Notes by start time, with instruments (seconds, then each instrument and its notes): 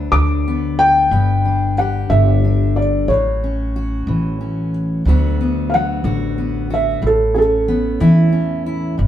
Already playing: steel-string acoustic guitar D2 D3 F#3 B3 D4
0.12 upright bass D2, steel-string acoustic guitar D3, felt piano D6
0.48 steel-string acoustic guitar B3
0.79 felt piano G5
1.11 upright bass G1, steel-string acoustic guitar G2 B3
1.45 steel-string acoustic guitar D4
1.78 steel-string acoustic guitar G4, felt piano F#5
2.10 upright bass G1, steel-string acoustic guitar D3, felt piano E5
2.45 steel-string acoustic guitar D4
2.76 felt piano D5
3.08 upright bass A1, steel-string acoustic guitar A2 F#3, felt piano C#5
3.44 steel-string acoustic guitar C#4
3.76 steel-string acoustic guitar F#4
4.07 upright bass A1, steel-string acoustic guitar E3
4.41 steel-string acoustic guitar C#4
5.05 upright bass D2, steel-string acoustic guitar D2 D3 F#3 B3 F#4
5.41 steel-string acoustic guitar B3
5.70 felt piano F5
5.74 steel-string acoustic guitar F#3, felt piano F#5
6.04 upright bass A1, steel-string acoustic guitar D3 F#4
6.38 steel-string acoustic guitar B3
6.70 steel-string acoustic guitar F#4, felt piano E5
7.02 upright bass A1, steel-string acoustic guitar A2
7.07 felt piano A4
7.34 steel-string acoustic guitar C#4, felt piano G#4 A4
7.68 steel-string acoustic guitar B3
8.00 upright bass E2, steel-string acoustic guitar E3 E4
8.32 steel-string acoustic guitar C#4
8.66 steel-string acoustic guitar E4
8.98 upright bass G1, steel-string acoustic guitar G2